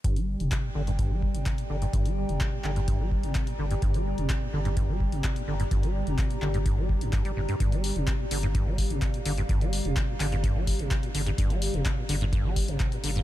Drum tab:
HH |xx-xx--xx--xxx-x|xx-xx--xx--xxx-x|xx-xx--xx--xxx-x|xx-xxx-xx--xxx-x|
CP |----x-------x---|----x-x-----x---|----x-------x---|----x-x-----x---|
BD |o---o---o-o-o---|o---o---o-o-o---|o---o---o-o-o---|o---o---o-o-o---|

HH |xxoxx-oxx-oxxxox|xxoxx-oxx-oxxxox|xxoxx-oxx-oxxxox|
CP |----x-------x---|----x-x-----x---|----x-------x---|
BD |o---o---o-o-o---|o---o---o-o-o---|o---o---o-o-o---|